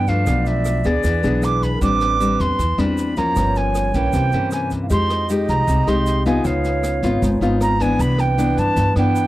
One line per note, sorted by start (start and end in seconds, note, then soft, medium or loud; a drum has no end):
0.00 0.23 G2 medium
0.00 0.25 G2 medium
0.00 0.27 B4 medium
0.07 0.82 F3 medium
0.07 0.82 A3 medium
0.07 0.82 D4 medium
0.07 0.49 F5 medium
0.07 kick soft
0.07 snare soft
0.07 shaker soft
0.26 0.81 B1 medium
0.26 1.02 B2 soft
0.26 1.05 D5 medium
0.26 kick soft
0.26 cross-stick medium
0.26 snare soft
0.26 shaker medium
0.46 0.88 E5 medium
0.46 snare soft
0.46 shaker soft
0.65 cross-stick medium
0.65 snare soft
0.65 shaker medium
0.84 1.03 D2 medium
0.84 1.20 B3 medium
0.84 1.20 D4 medium
0.84 1.21 G#4 medium
0.84 1.46 D5 medium
0.84 kick soft
0.84 snare soft
0.84 shaker soft
1.03 1.22 E2 medium
1.03 1.79 E3 medium
1.03 1.74 B4 medium
1.03 kick medium
1.03 snare soft
1.03 shaker medium
1.23 1.78 B1 medium
1.23 1.78 B3 medium
1.23 1.78 D4 medium
1.23 1.79 G#4 medium
1.23 snare soft
1.23 shaker soft
1.42 1.64 D6 medium
1.42 cross-stick medium
1.42 snare soft
1.42 shaker medium
1.62 1.82 B5 medium
1.62 kick soft
1.62 snare soft
1.62 shaker soft
1.75 1.83 A#4 medium
1.81 2.35 A1 medium
1.81 2.57 A2 medium
1.81 2.17 G3 medium
1.81 2.17 C4 medium
1.81 2.17 D4 medium
1.81 3.09 B4 loud
1.81 2.42 D6 loud
1.81 kick medium
1.81 snare soft
1.81 shaker medium
2.01 cross-stick medium
2.01 snare soft
2.01 shaker soft
2.20 2.58 G3 medium
2.20 2.59 C4 medium
2.20 2.59 D4 medium
2.20 snare soft
2.20 shaker medium
2.40 2.57 E2 loud
2.40 2.81 C6 medium
2.40 kick soft
2.40 snare soft
2.40 shaker soft
2.59 2.77 E2 medium
2.59 3.34 E3 soft
2.59 kick medium
2.59 snare soft
2.59 shaker medium
2.78 3.32 E2 medium
2.78 3.13 G3 medium
2.78 3.14 C4 medium
2.78 3.14 D4 medium
2.78 3.20 B5 medium
2.78 cross-stick medium
2.78 snare soft
2.78 shaker soft
2.98 snare soft
2.98 shaker medium
3.17 3.91 F3 medium
3.17 3.91 A#3 medium
3.17 3.91 C#4 medium
3.17 3.59 A#5 loud
3.17 kick soft
3.17 snare soft
3.17 shaker soft
3.36 3.90 G1 medium
3.36 4.11 G2 medium
3.36 4.15 C#5 loud
3.36 kick medium
3.36 cross-stick medium
3.36 snare soft
3.36 shaker medium
3.55 3.96 G#5 medium
3.55 snare soft
3.55 shaker soft
3.75 cross-stick soft
3.75 snare soft
3.75 shaker medium
3.94 4.12 A#1 medium
3.94 4.30 E3 medium
3.94 4.30 A#3 medium
3.94 4.30 C#4 medium
3.94 4.52 G5 medium
3.94 kick soft
3.94 snare soft
3.94 shaker soft
4.13 4.31 C2 medium
4.13 4.89 C3 soft
4.13 4.71 C5 medium
4.13 kick medium
4.13 snare soft
4.13 shaker medium
4.32 4.86 G2 medium
4.32 4.88 E3 medium
4.32 4.88 A#3 medium
4.32 4.88 C#4 medium
4.32 snare soft
4.32 shaker soft
4.51 4.70 G#5 medium
4.51 cross-stick soft
4.51 snare soft
4.51 shaker medium
4.70 kick soft
4.70 snare soft
4.70 shaker soft
4.82 4.91 F5 medium
4.89 5.44 F2 medium
4.89 5.65 F3 soft
4.89 5.26 G#3 soft
4.89 5.26 D#4 medium
4.89 5.26 G4 medium
4.89 6.38 D#5 loud
4.89 5.27 C6 medium
4.89 kick medium
4.89 snare soft
4.89 shaker medium
5.10 cross-stick medium
5.10 snare soft
5.10 shaker soft
5.29 5.84 G#3 soft
5.29 5.84 D#4 soft
5.29 5.84 G4 medium
5.29 snare soft
5.29 shaker medium
5.48 5.66 C2 medium
5.48 5.90 A#5 medium
5.48 kick soft
5.48 snare soft
5.48 shaker soft
5.68 5.86 C2 medium
5.68 6.43 C3 soft
5.68 kick medium
5.68 snare soft
5.68 shaker medium
5.87 6.41 C2 medium
5.87 6.23 G#3 medium
5.87 6.23 D#4 medium
5.87 6.23 G4 medium
5.87 6.26 C6 medium
5.87 cross-stick medium
5.87 snare soft
5.87 shaker soft
6.06 snare soft
6.06 shaker medium
6.25 7.00 B3 medium
6.25 7.00 D#4 medium
6.25 7.00 F4 medium
6.25 6.48 G#5 medium
6.25 kick soft
6.25 snare soft
6.25 shaker soft
6.38 6.46 D#5 medium
6.44 6.99 C#2 medium
6.44 7.20 C#3 medium
6.44 7.72 C#5 loud
6.44 7.23 F5 medium
6.44 kick medium
6.44 cross-stick medium
6.44 snare soft
6.44 shaker medium
6.64 snare soft
6.64 shaker soft
6.83 cross-stick medium
6.83 snare soft
6.83 shaker medium
7.03 7.21 G#1 medium
7.03 7.38 B3 soft
7.03 7.39 D#4 medium
7.03 7.39 F4 medium
7.03 kick soft
7.03 snare soft
7.03 shaker soft
7.22 7.40 G#1 loud
7.22 7.97 G#2 medium
7.22 kick medium
7.22 snare soft
7.22 shaker medium
7.41 7.95 G#1 medium
7.41 7.77 B3 medium
7.41 7.77 D#4 medium
7.41 7.77 F4 medium
7.41 snare soft
7.41 shaker soft
7.61 7.83 A#5 loud
7.61 cross-stick medium
7.61 snare soft
7.61 shaker medium
7.80 8.35 E3 medium
7.80 8.35 B3 medium
7.80 8.35 D4 medium
7.80 8.02 G#5 loud
7.80 kick soft
7.80 snare soft
7.80 shaker soft
7.98 8.53 C2 medium
7.98 8.75 C3 medium
7.98 9.27 B4 loud
7.98 8.22 B5 loud
7.98 kick medium
7.98 snare soft
7.98 shaker medium
8.18 8.60 G5 medium
8.18 cross-stick medium
8.18 snare soft
8.18 shaker soft
8.37 8.93 E3 soft
8.37 8.93 B3 medium
8.37 8.93 D4 medium
8.37 snare soft
8.37 shaker medium
8.57 8.75 G2 medium
8.57 8.97 A5 loud
8.57 kick soft
8.57 snare soft
8.57 shaker soft
8.76 9.27 G2 medium
8.76 8.95 G2 medium
8.76 kick medium
8.76 snare soft
8.76 shaker medium
8.96 9.27 G2 medium
8.96 9.27 E3 medium
8.96 9.27 B3 medium
8.96 9.27 D4 medium
8.96 9.27 G5 medium
8.96 cross-stick medium
8.96 snare soft
8.96 shaker soft
9.15 snare soft
9.15 shaker medium